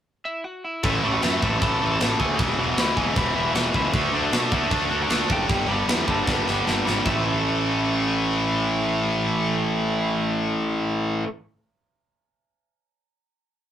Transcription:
0.25 E4 E5
0.44 F#4 F#5
0.64 E4 E5
0.83 A1 A2 E3 A3 E4 E5, kick, crash
1.03 A1 A2 E3 A3
1.13 F#4 F#5
1.22 F#2 A2 E3 A3, snare, crash
1.41 A1 A2 E3 A3 E4 E5, kick
1.61 A1 A2 E3 A3 A4 A5, kick, crash
1.81 A1 A2 E3 A3
1.92 A4 A5
2.00 A1 A2 E3 A3, snare, crash
2.19 D2 A2 E3 A3 G#4 G#5, kick
2.39 E1 E2 B2 E3, kick, crash
2.59 E1 E2 B2 E3 F#4 F#5
2.77 D2 E2 B2 E3, snare, crash
2.97 E1 E2 B2 E3 G#4 G#5, kick
3.16 E1 E2 B2 E3 B4 B5, kick, crash
3.35 E1 E2 B2 E3 E4 E5
3.54 E1 E2 B2 E3 F#4 F#5, snare, crash
3.74 C#2 E2 B2 E3 E4 E5, kick
3.93 D2 D3 A3 D4 E4 E5, kick, crash
4.13 D2 D3 A3 D4
4.23 F#4 F#5
4.32 B2 D3 A3 D4, snare, crash
4.52 D2 D3 A3 D4 E4 E5, kick
4.71 D2 D3 A3 D4 A4 A5, kick, crash
4.89 D2 D3 A3 D4
5.01 F#4 F#5
5.08 D2 D3 A3 D4, snare, crash
5.28 F#1 D3 A3 D4, kick
5.32 G4 G5
5.47 G1 G2 D3 G3, kick, crash
5.67 G1 G2 D3 G3 B5
5.71 B4
5.87 E2 G2 D3 G3, snare, crash
6.07 G1 G2 D3 G3 A4 A5, kick
6.26 G1 G2 D3 G3 B4 B5, kick, snare
6.46 G1 G2 D3 G3, snare
6.65 G1 G2 D3 G3, snare
6.85 G#1 G2 D3 G3, snare
7.04 A1 A2 E3 E5, kick
7.09 A3

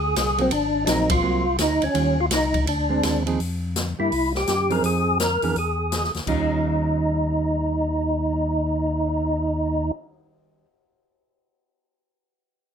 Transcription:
Already playing: D2 G#4
0.16 C2, snare, hi-hat pedal, ride
0.38 F#3 A#3 C4, ride
0.51 G#1 D4, ride
0.86 A#1 F#3 A#3 C4 D4 D#4, snare, hi-hat pedal, ride
1.10 F4, kick, ride
1.22 C2 F#3 A#3 C4
1.59 D2 D#4, snare, hi-hat pedal, ride
1.82 D2 C#4, ride
1.94 D#2 D#3 G3 C#4 F4, ride
2.20 F4
2.31 C2 D#4, snare, hi-hat pedal, ride
2.54 kick, ride
2.67 D2 D4, ride
2.89 G#3 C4 D4
3.03 D#2, snare, hi-hat pedal, ride
3.26 F3 C4 D#4 G#4, ride
3.40 F2, open hi-hat
3.76 snare, closed hi-hat
3.99 G2 G3 A#3 E4
4.12 C2, open hi-hat
4.35 G4, snare
4.47 F#2, snare, closed hi-hat
4.70 F3 C4 D#4 G#4 A#4, open hi-hat
4.83 F2 G#4, open hi-hat
5.20 A#4, snare, closed hi-hat
5.42 F2 E3 B3 D4 G#4, open hi-hat
5.56 E2 G#4, open hi-hat
5.92 snare, closed hi-hat
6.04 snare
6.14 E2, snare, open hi-hat
6.27 D#2 D#3 G3 C#4 D#4 F4, kick, crash
6.50 cymbal swell

